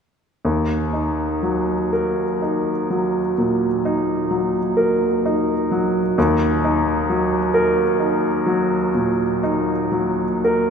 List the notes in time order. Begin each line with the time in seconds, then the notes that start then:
0.45 D#2
0.93 D#4
1.43 F#3
1.93 A#4
2.42 D#4
2.90 F#3
3.38 A#2
3.85 D#4
4.31 F#3
4.77 A#4
5.25 D#4
5.71 F#3
6.18 D#2
6.64 D#4
7.10 F#3
7.54 A#4
8.00 D#4
8.46 F#3
8.95 A#2
9.43 D#4
9.92 F#3
10.44 A#4